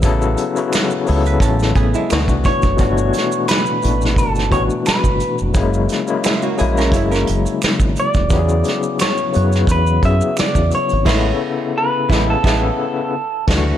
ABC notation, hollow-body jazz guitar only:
X:1
M:4/4
L:1/16
Q:"Swing 16ths" 1/4=87
K:A
V:1 name="Hollow-body jazz guitar"
z6 z B [CA]2 [B,G] [G,E]2 z3 | z16 | z4 [G,E] [^A,F] G [C^A] [Ec] [CA]6 z | z16 |
[G,E]2 z4 [G,E]2 [G,E]2 z6 |]